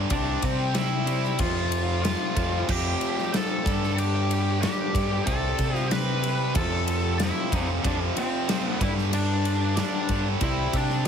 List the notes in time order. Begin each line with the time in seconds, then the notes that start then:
0.10 C2 C3 G3 C4 D4 D5, kick, ride
0.42 C3 C4 C5, kick, ride
0.75 C3 G3 C4 E4 E5, snare, ride
1.07 C3 G3 C4, ride
1.24 snare
1.39 F2 C3 F3 F4 F5, kick, ride
1.72 ride
2.03 F2 C3 F3 F4 F5, snare, ride
2.35 F2 C3 F3, kick, ride
2.68 F2 C3 F3 G4 G5, kick, crash
3.01 ride
3.19 snare
3.32 F2 C3 F3 A4 A5, snare, ride
3.64 G2 D3 G3, kick, ride
3.83 snare
3.96 G2 D3 G3 G4 G5, ride
4.31 ride
4.61 G2 D3 G3 G4 G5, snare, ride
4.93 G2 D3 G3, kick, ride
5.24 C2 C3 G3 C4 A4 A5, kick, ride
5.59 C3, kick, ride
5.75 G5, snare
5.89 C3 G3 C4 B4 B5, snare, ride
6.23 C3 G3 C4, ride
6.54 F2 C3 F3 A4 A5, kick, ride
6.88 ride
7.20 F2 C3 F3 E4 E5, snare, ride
7.52 F2 C3 F3, kick, ride
7.84 F2 C3 F3 D4 D5, kick, ride
8.17 C4 C5, ride
8.49 F2 C3 F3, snare, ride
8.65 B4
8.81 G2 D3 G3 E4 E5, kick, ride
8.98 snare
9.13 G2 D3 G3 D4 D5, ride
9.45 ride
9.77 G2 D3 G3 D4 D5, snare, ride
10.09 G2 D3 G3, kick, ride
10.41 C2 C3 G3 C4 E4 E5, kick, ride
10.73 C3 D4 D5, kick, ride
10.90 snare